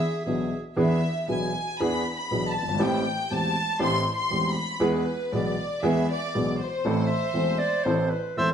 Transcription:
Already playing: clarinet G#4, violin section E5
0.25 grand piano B1 B2 E3 B3 D4 G#4, clarinet G#4
0.76 grand piano E2 E3 B3 D4 G#4, violin section E5
1.28 grand piano B1 B2 E3 B3 D4 G#4, violin section G#5
1.80 grand piano E2 E3 B3 D4 G#4, violin section B5
2.15 violin section B5
2.31 grand piano B1 B2 E3 B3 D4 G#4
2.49 violin section A5
2.62 grand piano F#1
2.68 grand piano G1
2.74 grand piano G#1
2.79 grand piano A1 A2 E3 A3 C4 G4, violin section G5
3.30 grand piano E1 E2 E3 A3 C4 G4, violin section A5
3.79 grand piano A1 A2 E3 A3 C4 G4, violin section C6
4.16 violin section C6
4.30 grand piano E1 E2 E3 A3 C4 G4
4.49 violin section B5
4.80 grand piano E2 E3 G#3 B3 G#4, violin section B4
5.32 grand piano B1 B2 E3 G#3 B3 G#4, violin section D5
5.83 grand piano E2 E3 G#3 B3 G#4, violin section E5
6.10 violin section D5
6.35 grand piano B1 B2 E3 G#3 B3 G#4
6.61 violin section C5
6.85 grand piano A1 A2 E3 A3 C4 A4
7.07 clarinet E5
7.34 grand piano E1 E2 E3 A3 C4 A4
7.58 clarinet D5
7.84 grand piano A1 A2 E3 A3 C4 A4, clarinet C5
8.10 clarinet B4
8.37 grand piano E1 E2 E3 A3 C4 A4, clarinet A4, bandoneon C5 E5

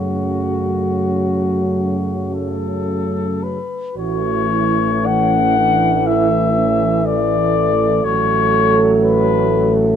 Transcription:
Already playing: tuba F#2, trombone C#3, euphonium F#3, french horn section A3, flugelhorn F#4
2.34 flugelhorn A4
3.43 flugelhorn B4
3.95 tuba A1, trombone E3, euphonium A3, french horn section F#4, flugelhorn C#5
4.52 french horn section E4
5.05 french horn section C#4, flugelhorn F#5
5.57 french horn section D4
6.06 french horn section E4, flugelhorn E5
6.57 french horn section C#4
7.05 french horn section A4, flugelhorn D5
8.04 tuba A1, trombone F#3, euphonium A3, flugelhorn C#5
9.03 flugelhorn B4

